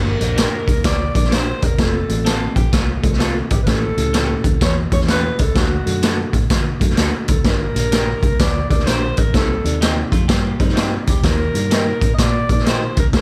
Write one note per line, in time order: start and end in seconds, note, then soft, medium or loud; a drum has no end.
0.00 0.14 G1 loud
0.00 0.64 G2 medium
0.00 0.10 A#3 medium
0.00 0.10 D4 medium
0.00 0.10 G4 medium
0.00 0.11 A#4 medium
0.00 0.85 A#4 loud
0.19 0.46 A#1 loud
0.19 0.78 A#3 medium
0.19 0.78 D4 medium
0.19 0.78 G4 medium
0.19 0.25 A4 medium
0.19 closed hi-hat medium
0.26 0.81 A#4 medium
0.36 0.51 D4 medium
0.36 0.51 G4 medium
0.36 0.51 A#4 medium
0.36 snare loud
0.36 closed hi-hat loud
0.68 0.74 C2 loud
0.68 kick medium
0.68 closed hi-hat medium
0.76 0.83 D2 medium
0.84 1.08 D2 medium
0.84 1.13 D5 loud
0.84 kick loud
0.84 snare loud
0.84 closed hi-hat loud
1.14 1.52 A#1 medium
1.14 1.61 A#3 medium
1.14 1.61 D4 medium
1.14 1.61 G4 medium
1.14 1.61 A#4 medium
1.14 1.34 D5 loud
1.14 kick loud
1.14 closed hi-hat medium
1.24 snare soft
1.31 1.45 D4 loud
1.31 1.45 G4 medium
1.31 1.46 A#4 loud
1.31 1.65 C5 loud
1.31 snare loud
1.31 closed hi-hat medium
1.62 1.75 E1 medium
1.62 1.81 A#4 loud
1.62 kick medium
1.62 closed hi-hat medium
1.78 2.03 F1 loud
1.78 1.98 A3 medium
1.78 1.99 C4 medium
1.78 1.99 F4 medium
1.78 1.99 A4 medium
1.78 2.57 A4 loud
1.78 kick loud
1.78 snare loud
1.78 closed hi-hat medium
2.09 2.46 A1 loud
2.09 2.67 A3 medium
2.09 2.67 C4 medium
2.09 2.67 F4 medium
2.09 2.13 G#4 medium
2.09 closed hi-hat medium
2.15 2.70 A4 medium
2.25 2.39 C4 medium
2.25 2.55 C4 medium
2.25 2.39 F4 medium
2.25 2.55 A4 medium
2.25 2.40 A4 medium
2.25 snare loud
2.25 closed hi-hat loud
2.56 2.69 A#1 medium
2.56 2.72 G4 loud
2.56 kick loud
2.56 closed hi-hat medium
2.72 2.97 C2 medium
2.72 3.47 A3 medium
2.72 3.47 F4 medium
2.72 kick loud
2.72 snare loud
2.72 closed hi-hat loud
3.02 3.40 C2 loud
3.02 3.49 A3 medium
3.02 3.50 C4 medium
3.02 3.50 F4 medium
3.02 3.50 A4 medium
3.02 kick loud
3.02 closed hi-hat medium
3.13 snare soft
3.19 3.33 C4 medium
3.19 3.34 F4 loud
3.19 3.34 A4 medium
3.19 snare loud
3.19 closed hi-hat medium
3.50 3.64 G#1 medium
3.50 3.62 G4 medium
3.50 kick loud
3.50 closed hi-hat medium
3.63 4.41 A2 medium
3.63 3.87 A3 medium
3.63 3.87 C#4 medium
3.63 3.87 E4 medium
3.63 3.87 G4 medium
3.63 3.69 B4 medium
3.67 3.91 A1 loud
3.67 4.61 A4 loud
3.67 kick loud
3.67 snare medium
3.67 closed hi-hat medium
3.97 4.35 C#2 loud
3.97 4.55 A3 medium
3.97 4.55 C#4 medium
3.97 4.55 E4 medium
3.97 4.55 G4 medium
3.97 closed hi-hat medium
4.13 4.28 C#4 medium
4.13 4.28 G4 medium
4.13 4.28 A4 medium
4.13 snare loud
4.13 closed hi-hat loud
4.44 4.57 D2 loud
4.44 kick loud
4.44 closed hi-hat medium
4.61 4.86 E2 loud
4.61 4.76 C#5 loud
4.61 kick loud
4.61 snare loud
4.61 closed hi-hat medium
4.91 5.29 E2 loud
4.91 5.38 A3 medium
4.91 5.38 C#4 medium
4.91 5.38 E4 medium
4.91 5.38 G4 medium
4.91 5.00 C#5 loud
4.91 kick loud
4.91 closed hi-hat medium
5.01 snare soft
5.08 5.22 C#4 medium
5.08 5.22 G4 medium
5.08 5.23 A4 loud
5.08 5.43 B4 medium
5.08 snare loud
5.08 closed hi-hat medium
5.39 5.52 C#2 medium
5.39 5.59 A4 loud
5.39 kick medium
5.39 closed hi-hat medium
5.55 5.80 D2 loud
5.55 6.30 D3 medium
5.55 5.76 A3 medium
5.55 5.76 D4 medium
5.55 5.76 F#4 medium
5.55 6.35 F#4 medium
5.55 5.76 A4 medium
5.55 kick loud
5.55 snare loud
5.55 closed hi-hat medium
5.86 6.24 F#2 loud
5.86 6.44 A3 medium
5.86 6.44 D4 medium
5.86 6.44 F#4 medium
5.86 6.44 A4 medium
5.86 closed hi-hat medium
6.03 6.17 D4 medium
6.03 6.17 F#4 medium
6.03 6.17 A4 medium
6.03 snare loud
6.03 closed hi-hat loud
6.33 6.46 A2 medium
6.33 kick medium
6.33 closed hi-hat medium
6.50 6.75 D3 loud
6.50 kick loud
6.50 snare loud
6.50 closed hi-hat loud
6.80 6.94 F#2 medium
6.80 7.27 A3 medium
6.80 7.27 D4 medium
6.80 7.27 F#4 medium
6.80 7.27 A4 medium
6.80 kick medium
6.80 closed hi-hat medium
6.90 snare soft
6.97 7.10 D2 medium
6.97 7.11 D4 medium
6.97 7.12 F#4 loud
6.97 7.12 A4 loud
6.97 snare loud
6.97 closed hi-hat loud
7.28 7.35 C2 medium
7.28 7.45 A4 medium
7.28 kick loud
7.28 closed hi-hat medium
7.36 7.43 D2 medium
7.44 7.69 G1 loud
7.44 8.19 G2 medium
7.44 7.65 A#3 medium
7.44 7.65 D4 medium
7.44 7.65 G4 medium
7.44 7.65 A#4 medium
7.44 8.42 A#4 loud
7.44 kick loud
7.44 snare loud
7.44 closed hi-hat medium
7.75 8.13 A#1 medium
7.75 8.33 A#3 medium
7.75 8.33 D4 medium
7.75 8.33 G4 medium
7.75 8.33 A#4 medium
7.75 closed hi-hat medium
7.92 8.06 D4 medium
7.92 8.06 G4 medium
7.92 8.07 A#4 medium
7.92 snare loud
7.92 closed hi-hat loud
8.23 8.36 C2 medium
8.23 kick loud
8.23 closed hi-hat medium
8.39 8.64 D2 loud
8.39 8.70 D5 loud
8.39 kick loud
8.39 snare loud
8.39 closed hi-hat loud
8.69 8.83 D2 medium
8.69 9.16 A#3 medium
8.69 9.16 D4 medium
8.69 9.16 G4 medium
8.69 8.74 A4 medium
8.69 8.88 D5 loud
8.69 kick medium
8.69 closed hi-hat medium
8.76 9.19 A#4 medium
8.76 snare soft
8.87 9.11 A#1 medium
8.87 9.01 D4 loud
8.87 9.01 G4 loud
8.87 9.01 A#4 loud
8.87 9.20 C5 loud
8.87 snare loud
8.87 closed hi-hat loud
9.17 9.31 A1 medium
9.17 9.34 A#4 medium
9.17 kick loud
9.17 closed hi-hat medium
9.33 9.58 C2 loud
9.33 10.08 C3 medium
9.33 9.54 C4 medium
9.33 9.54 D#4 medium
9.33 9.54 G4 medium
9.33 10.09 A4 medium
9.33 9.54 C5 medium
9.33 kick loud
9.33 snare medium
9.33 closed hi-hat medium
9.64 10.02 D#2 loud
9.64 10.22 C4 medium
9.64 10.22 D#4 medium
9.64 10.23 G4 medium
9.64 10.23 D5 medium
9.64 closed hi-hat medium
9.81 9.95 D#4 medium
9.81 9.96 G4 medium
9.81 9.96 C5 medium
9.81 snare loud
9.81 closed hi-hat loud
10.12 10.25 F2 medium
10.12 10.28 A3 medium
10.12 10.28 F4 medium
10.12 kick medium
10.12 closed hi-hat medium
10.28 10.53 G2 medium
10.28 10.58 A#3 medium
10.28 10.58 G4 loud
10.28 kick loud
10.28 snare loud
10.28 closed hi-hat loud
10.59 10.97 G2 loud
10.59 11.20 G3 medium
10.59 11.06 C4 medium
10.59 10.63 D4 medium
10.59 11.20 D#4 medium
10.59 11.06 G4 medium
10.59 11.06 C5 loud
10.59 kick loud
10.59 closed hi-hat medium
10.65 11.09 D#4 medium
10.69 snare soft
10.76 10.90 D#4 medium
10.76 10.90 G4 loud
10.76 10.90 C5 loud
10.76 snare loud
10.76 closed hi-hat medium
11.07 11.20 D2 medium
11.07 11.23 G4 medium
11.07 kick medium
11.07 closed hi-hat medium
11.23 11.48 D#2 loud
11.23 11.98 D#3 medium
11.23 11.44 A#3 medium
11.23 11.44 D#4 medium
11.23 11.44 G4 medium
11.23 11.44 A#4 medium
11.23 12.11 A#4 loud
11.23 kick loud
11.23 snare loud
11.23 closed hi-hat medium
11.54 11.92 G2 medium
11.54 12.12 A#3 medium
11.54 12.12 D#4 medium
11.54 12.12 G4 medium
11.54 12.12 A#4 medium
11.54 closed hi-hat medium
11.71 11.85 A#3 medium
11.71 11.85 D#4 medium
11.71 11.85 G4 medium
11.71 snare loud
11.71 closed hi-hat loud
12.01 12.15 A2 loud
12.01 kick loud
12.01 closed hi-hat medium
12.14 12.22 D#5 medium
12.18 12.43 A#2 medium
12.18 12.50 D5 loud
12.18 kick loud
12.18 snare loud
12.18 closed hi-hat loud
12.49 12.87 A#2 medium
12.49 12.96 A#3 medium
12.49 12.96 D#4 medium
12.49 12.96 G4 medium
12.49 12.96 A#4 medium
12.49 12.66 D5 loud
12.49 kick loud
12.49 closed hi-hat medium
12.59 snare soft
12.65 12.79 A#3 loud
12.65 12.80 D#4 loud
12.65 12.80 G4 loud
12.65 12.95 C5 loud
12.65 snare loud
12.65 closed hi-hat medium
12.97 13.10 C#2 medium
12.97 13.06 A#4 medium
12.97 kick loud
12.97 closed hi-hat medium
13.12 13.21 D2 loud
13.12 13.21 D3 medium
13.12 13.21 A3 medium
13.12 13.21 D4 medium
13.12 13.21 F#4 medium
13.12 13.21 A4 medium
13.12 kick loud
13.12 snare loud
13.12 closed hi-hat medium